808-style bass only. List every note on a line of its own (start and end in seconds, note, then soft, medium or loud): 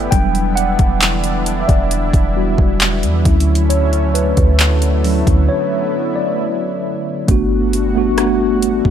0.12 0.77 E1 loud
0.79 1.65 E1 loud
1.69 2.12 E1 loud
2.14 2.57 E1 loud
2.58 3.05 E1 loud
3.03 3.25 E2 loud
3.26 4.33 D2 loud
4.37 5.23 D2 loud
5.27 5.48 D2 loud
7.29 8.81 G1 loud
8.85 8.90 G1 loud